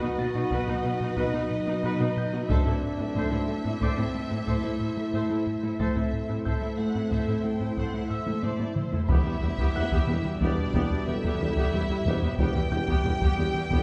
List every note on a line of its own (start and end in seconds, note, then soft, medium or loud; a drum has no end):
0.00 0.09 B2 soft
0.00 2.46 F#3 medium
0.00 0.12 B3 medium
0.00 2.46 D#4 medium
0.00 0.09 D#4 soft
0.00 1.14 F#4 medium
0.00 2.46 F#4 medium
0.00 0.12 F#4 medium
0.00 0.09 F#4 soft
0.00 2.46 B4 medium
0.00 2.46 D#5 medium
0.00 0.15 A5 soft
0.18 0.25 B2 soft
0.18 0.28 B3 medium
0.18 0.29 F#4 medium
0.18 0.26 F#4 soft
0.18 2.13 A6 soft
0.34 0.45 B2 medium
0.34 0.42 B2 medium
0.34 0.41 D#4 soft
0.34 0.45 D#4 medium
0.34 0.41 F#4 soft
0.51 0.61 B2 medium
0.51 0.58 B2 medium
0.51 0.62 B3 medium
0.51 0.66 F#4 medium
0.51 0.67 B4 medium
0.51 taiko medium
0.67 0.78 B2 medium
0.67 0.75 B2 soft
0.67 0.74 D#4 soft
0.67 0.78 D#4 medium
0.67 0.74 F#4 soft
0.84 0.91 B2 soft
0.84 0.94 B3 medium
0.84 0.91 F#4 medium
0.84 0.95 F#4 medium
1.00 1.11 B2 medium
1.00 1.08 B2 soft
1.00 1.08 D#4 medium
1.00 1.11 D#4 soft
1.00 1.08 F#4 medium
1.17 1.27 B2 medium
1.17 1.25 B2 medium
1.17 1.28 B3 medium
1.17 2.49 D#4 medium
1.17 1.32 F#4 medium
1.17 1.33 B4 medium
1.17 taiko medium
1.33 1.41 B2 soft
1.33 1.44 B3 medium
1.33 1.40 D#4 soft
1.33 1.40 F#4 soft
1.33 1.44 F#4 medium
1.50 1.61 B2 medium
1.66 1.74 B2 soft
1.66 1.77 B3 medium
1.66 1.73 D#4 medium
1.66 1.73 F#4 soft
1.66 1.77 F#4 medium
1.83 1.90 B2 medium
1.83 1.94 B2 medium
1.83 1.93 B3 medium
1.83 1.99 F#4 medium
1.83 1.99 B4 medium
2.00 2.06 B2 soft
2.00 2.10 B3 medium
2.00 2.07 D#4 soft
2.00 2.10 F#4 medium
2.00 2.07 F#4 soft
2.17 2.27 B2 medium
2.17 4.11 G6 soft
2.33 2.40 B2 soft
2.33 2.44 B3 medium
2.33 2.40 D#4 soft
2.33 2.43 F#4 soft
2.33 2.40 F#4 medium
2.48 2.56 A2 medium
2.48 2.60 A2 medium
2.48 2.59 A3 medium
2.48 5.80 A3 medium
2.48 3.79 D4 medium
2.48 5.79 E4 medium
2.48 2.65 A4 medium
2.48 2.65 C5 medium
2.48 5.79 C5 medium
2.48 5.79 E5 medium
2.48 5.80 E5 medium
2.48 taiko medium
2.65 2.72 A2 soft
2.65 2.76 A2 soft
2.65 2.75 C4 medium
2.65 2.73 E4 soft
2.65 2.73 A4 soft
2.83 2.93 A2 medium
2.98 3.06 A2 soft
2.98 3.09 A2 medium
2.98 3.08 C4 medium
2.98 3.06 E4 soft
2.98 3.06 A4 soft
3.15 3.22 A2 medium
3.15 3.25 A2 medium
3.15 3.25 A3 medium
3.15 3.30 A4 medium
3.15 3.31 C5 medium
3.15 taiko medium
3.31 3.38 A2 soft
3.31 3.42 A3 medium
3.31 3.41 E4 soft
3.31 3.38 E4 soft
3.31 3.38 A4 soft
3.48 3.55 A2 soft
3.48 3.59 A3 medium
3.48 3.58 E4 medium
3.48 3.55 A4 soft
3.64 3.71 A2 soft
3.64 3.75 A2 soft
3.64 3.74 C4 medium
3.64 3.72 E4 soft
3.64 3.72 A4 soft
3.80 3.91 A2 medium
3.80 3.88 A2 medium
3.80 3.90 A3 medium
3.80 4.48 C4 medium
3.80 3.96 A4 medium
3.80 3.97 C5 soft
3.80 5.76 D5 soft
3.80 5.76 D6 soft
3.80 taiko medium
3.97 4.05 A2 soft
3.97 4.08 A2 medium
3.97 4.08 C4 medium
3.97 4.04 E4 soft
3.97 4.04 A4 soft
4.13 4.21 A2 soft
4.13 4.25 A3 medium
4.13 4.24 E4 medium
4.13 4.21 A4 soft
4.30 4.38 A2 soft
4.30 4.41 A2 medium
4.30 4.40 C4 soft
4.30 4.37 E4 soft
4.30 4.37 A4 soft
4.46 4.54 A2 medium
4.46 4.58 A2 medium
4.46 4.57 A3 medium
4.46 5.76 E4 medium
4.46 4.62 A4 medium
4.46 4.63 C5 medium
4.46 taiko medium
4.63 4.71 A2 soft
4.63 4.74 A3 medium
4.63 4.70 E4 soft
4.63 4.74 E4 medium
4.63 4.70 A4 soft
4.80 4.90 A2 medium
4.97 5.04 A2 soft
4.97 5.07 A3 medium
4.97 5.07 E4 medium
4.97 5.04 E4 soft
4.97 5.04 A4 soft
5.14 5.23 A2 medium
5.14 5.20 A2 medium
5.14 5.24 A3 medium
5.14 5.29 A4 medium
5.14 5.29 C5 soft
5.30 5.37 A2 soft
5.30 5.40 A3 medium
5.30 5.40 E4 soft
5.30 5.37 E4 soft
5.30 5.37 A4 soft
5.47 5.57 A2 medium
5.63 5.70 A2 soft
5.63 5.73 A3 medium
5.63 5.70 E4 soft
5.63 5.73 E4 soft
5.63 5.70 A4 soft
5.79 5.90 A2 medium
5.79 5.87 A2 soft
5.79 5.90 A3 medium
5.79 8.40 A3 medium
5.79 9.06 A3 medium
5.79 9.06 E4 medium
5.79 5.94 A4 soft
5.79 5.95 C5 medium
5.79 9.06 C5 medium
5.79 6.38 E5 soft
5.79 9.06 E5 medium
5.79 7.73 A6 soft
5.79 taiko medium
5.95 6.06 A2 soft
5.95 6.03 A2 soft
5.95 6.06 C4 soft
5.95 6.02 E4 soft
5.95 6.02 A4 soft
6.13 6.23 A2 medium
6.28 6.39 A2 medium
6.28 6.36 A2 soft
6.28 6.39 C4 medium
6.28 6.35 E4 soft
6.28 6.35 A4 soft
6.45 6.53 A2 soft
6.45 6.56 A2 medium
6.45 6.56 A3 medium
6.45 6.61 A4 soft
6.45 6.61 C5 soft
6.45 6.77 E5 soft
6.45 8.39 G6 soft
6.45 taiko medium
6.62 6.69 A2 soft
6.62 6.72 A3 soft
6.62 6.72 E4 soft
6.62 6.69 E4 soft
6.62 6.69 A4 soft
6.78 6.86 A2 soft
6.78 6.89 A3 soft
6.78 6.88 E4 soft
6.78 6.85 A4 soft
6.78 7.12 F#5 medium
6.95 7.05 A2 soft
6.95 7.02 A2 soft
6.95 7.05 C4 medium
6.95 7.02 E4 soft
6.95 7.02 A4 soft
7.11 7.21 A2 medium
7.11 7.18 A2 soft
7.11 7.21 A3 medium
7.11 7.27 A4 soft
7.11 7.27 C5 soft
7.11 7.45 E5 soft
7.11 taiko medium
7.28 7.38 A2 medium
7.28 7.35 A2 soft
7.28 7.38 C4 medium
7.28 7.35 E4 soft
7.28 7.35 A4 soft
7.44 7.51 A2 soft
7.44 7.54 A3 medium
7.44 7.54 E4 soft
7.44 7.51 A4 soft
7.44 7.77 G5 soft
7.61 7.71 A2 soft
7.61 7.68 A2 soft
7.61 7.71 C4 soft
7.61 7.68 E4 soft
7.61 7.68 A4 soft
7.77 7.87 A2 medium
7.77 7.84 A2 soft
7.77 7.87 A3 medium
7.77 7.93 A4 soft
7.77 7.93 C5 soft
7.77 8.11 F#5 soft
7.77 taiko medium
7.94 8.01 A2 soft
7.94 8.04 A3 soft
7.94 8.04 E4 soft
7.94 8.01 E4 soft
7.94 8.01 A4 soft
8.10 8.20 A2 medium
8.10 8.43 E5 soft
8.10 9.05 E6 soft
8.27 8.34 A2 soft
8.27 8.37 A3 soft
8.27 8.37 E4 soft
8.27 8.34 E4 soft
8.27 8.34 A4 soft
8.27 taiko high medium
8.43 8.53 A2 medium
8.43 8.50 A2 soft
8.43 8.53 A3 medium
8.43 8.59 A4 soft
8.43 8.59 C5 soft
8.43 8.76 D5 soft
8.43 taiko high medium
8.60 8.66 A2 soft
8.60 8.70 A3 medium
8.60 8.70 E4 medium
8.60 8.67 E4 soft
8.60 8.67 A4 soft
8.60 taiko high medium
8.74 8.86 A2 soft
8.74 9.08 C5 soft
8.74 taiko mid medium
8.92 8.99 A2 soft
8.92 9.02 A3 soft
8.92 9.03 E4 medium
8.92 9.00 E4 soft
8.92 8.99 A4 soft
8.92 taiko low medium
9.08 9.16 E1 medium
9.08 9.19 E2 medium
9.08 9.16 E2 medium
9.08 12.35 B2 medium
9.08 9.19 E3 medium
9.08 12.35 G3 medium
9.08 9.24 B3 medium
9.08 10.37 E4 medium
9.08 9.24 G4 medium
9.08 12.35 G4 medium
9.08 10.37 E5 medium
9.08 12.35 E5 medium
9.08 11.03 B5 soft
9.08 taiko medium
9.25 9.32 E2 soft
9.25 9.36 E3 soft
9.25 9.32 B3 soft
9.25 9.36 B3 medium
9.25 9.32 G4 soft
9.42 9.49 E1 soft
9.42 9.50 E1 soft
9.42 9.52 E2 medium
9.42 9.49 E2 soft
9.42 9.48 B3 soft
9.42 9.53 E4 medium
9.42 9.48 G4 soft
9.58 9.68 E2 medium
9.58 9.65 E2 medium
9.58 9.69 E3 medium
9.58 9.74 B3 medium
9.58 9.74 G4 medium
9.58 taiko medium
9.75 9.82 E1 soft
9.75 9.83 E1 soft
9.75 9.85 E2 soft
9.75 9.82 E2 soft
9.75 9.85 G3 medium
9.75 9.82 B3 soft
9.75 9.82 G4 soft
9.75 11.69 F#5 soft
9.75 11.69 F#6 soft
9.91 10.01 E2 medium
9.91 9.98 E2 medium
9.91 10.02 E3 medium
9.91 10.07 B3 soft
9.91 10.07 G4 medium
9.91 taiko medium
10.07 10.14 E1 soft
10.07 10.15 E1 soft
10.07 10.15 E2 soft
10.07 10.18 E3 medium
10.07 10.18 B3 medium
10.07 10.15 B3 soft
10.07 10.15 G4 soft
10.24 10.31 E2 soft
10.24 10.35 E3 medium
10.24 10.31 B3 soft
10.24 10.35 B3 medium
10.24 10.31 G4 soft
10.40 10.48 E1 medium
10.40 10.49 E1 medium
10.40 10.48 E2 medium
10.40 10.51 E2 medium
10.40 10.51 E3 medium
10.40 10.57 B3 medium
10.40 11.07 D4 medium
10.40 10.57 G4 soft
10.40 11.03 B4 medium
10.40 11.05 D5 medium
10.40 taiko medium
10.58 10.68 E2 medium
10.74 10.81 E1 medium
10.74 10.84 E2 medium
10.74 10.81 E2 medium
10.74 10.84 E3 medium
10.74 10.90 B3 medium
10.74 10.90 G4 medium
10.74 taiko medium
10.91 11.01 E2 medium
11.07 11.13 E1 soft
11.07 11.14 E1 soft
11.07 11.14 E2 soft
11.07 11.17 E3 medium
11.07 11.17 B3 medium
11.07 11.14 B3 soft
11.07 12.39 E4 medium
11.07 11.14 G4 soft
11.07 11.73 A4 medium
11.07 12.39 E5 medium
11.24 11.31 E2 medium
11.24 11.34 E2 medium
11.24 11.34 E3 medium
11.24 11.40 B3 medium
11.24 11.40 G4 medium
11.24 taiko medium
11.40 11.47 E1 soft
11.40 11.47 E2 soft
11.40 11.50 E3 medium
11.40 11.50 B3 medium
11.40 11.48 B3 soft
11.40 11.48 G4 soft
11.57 11.63 E2 medium
11.57 11.67 E2 medium
11.57 11.67 E3 medium
11.57 11.73 B3 medium
11.57 11.73 G4 medium
11.57 taiko medium
11.73 11.80 E1 soft
11.73 11.80 E2 soft
11.73 11.83 E2 soft
11.73 11.83 G3 medium
11.73 11.81 B3 soft
11.73 12.06 G4 medium
11.73 11.81 G4 soft
11.90 12.00 E2 medium
11.90 11.96 E2 soft
11.90 11.97 B3 soft
11.90 12.00 E4 medium
11.90 11.97 G4 soft
12.05 12.12 E1 medium
12.05 12.13 E1 medium
12.05 12.16 E2 medium
12.05 12.13 E2 medium
12.05 12.16 E3 medium
12.05 12.22 B3 medium
12.05 12.22 G4 medium
12.05 12.39 C5 medium
12.22 12.33 E2 medium
12.22 12.29 E2 soft
12.22 12.32 G3 medium
12.22 12.30 B3 soft
12.22 12.30 G4 soft
12.38 12.45 E1 medium
12.38 12.49 E2 medium
12.38 12.46 E2 medium
12.38 13.83 B2 medium
12.38 12.49 E3 medium
12.38 13.83 G3 medium
12.38 13.83 G3 soft
12.38 12.55 B3 medium
12.38 13.83 G4 medium
12.38 12.55 G4 medium
12.38 12.72 B4 soft
12.38 13.83 E5 medium
12.38 13.83 G5 medium
12.38 taiko medium
12.55 12.62 E2 soft
12.55 12.65 E3 medium
12.55 12.65 B3 medium
12.55 12.63 B3 soft
12.55 12.62 G4 soft
12.71 12.78 E1 soft
12.71 12.79 E1 soft
12.71 12.81 E2 medium
12.71 12.79 E2 soft
12.71 12.79 B3 soft
12.71 12.82 E4 medium
12.71 12.79 G4 soft
12.71 13.69 G4 medium
12.71 13.83 G6 soft
12.88 12.98 E2 medium
12.88 12.95 E2 medium
12.88 12.98 E3 medium
12.88 13.04 B3 medium
12.88 13.04 G4 medium
12.88 taiko medium
13.04 13.12 E1 soft
13.04 13.14 E2 medium
13.04 13.11 E2 soft
13.04 13.14 G3 medium
13.04 13.13 B3 soft
13.04 13.13 G4 soft
13.21 13.31 E2 medium
13.21 13.28 E2 medium
13.21 13.31 E3 medium
13.21 13.37 B3 medium
13.21 13.37 G4 medium
13.21 taiko medium
13.37 13.44 E1 soft
13.37 13.45 E1 soft
13.37 13.45 E2 soft
13.37 13.48 E3 medium
13.37 13.47 B3 medium
13.37 13.46 B3 soft
13.37 13.46 G4 soft
13.54 13.62 E2 soft
13.54 13.64 E3 medium
13.54 13.64 B3 medium
13.54 13.62 B3 soft
13.54 13.62 G4 soft
13.71 13.77 E1 medium
13.71 13.78 E1 medium
13.71 13.81 E2 medium
13.71 13.78 E2 medium
13.71 13.81 E3 medium
13.71 13.83 B3 medium
13.71 13.83 G4 medium
13.71 13.83 A4 medium
13.71 taiko medium